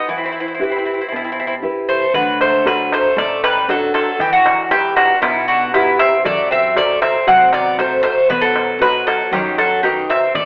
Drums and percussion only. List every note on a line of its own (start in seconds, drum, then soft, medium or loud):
2.15 darbuka dum medium
2.41 darbuka tek medium
2.67 darbuka tek medium
2.92 darbuka tek medium
3.18 darbuka tek medium
3.44 darbuka tek medium
3.70 darbuka tek medium
3.95 darbuka tek medium
4.20 darbuka dum loud
4.46 darbuka tek medium
4.71 darbuka tek medium
4.97 darbuka tek medium
5.23 darbuka tek medium
5.74 darbuka tek medium
5.99 darbuka tek medium
6.25 darbuka dum loud
6.77 darbuka tek medium
7.02 darbuka tek medium
7.28 darbuka tek medium
7.53 darbuka tek medium
7.79 darbuka tek medium
8.04 darbuka tek medium
8.30 darbuka dum loud
8.56 darbuka tek medium
8.68 darbuka tek soft
8.82 darbuka tek medium
8.95 darbuka tek soft
9.08 darbuka tek medium
9.21 darbuka tek soft
9.33 darbuka tek medium
9.33 darbuka dum medium
9.58 darbuka tek medium
9.72 darbuka tek soft
9.84 darbuka tek medium
9.97 darbuka tek soft
10.10 darbuka tek medium
10.23 darbuka tek soft
10.35 darbuka dum loud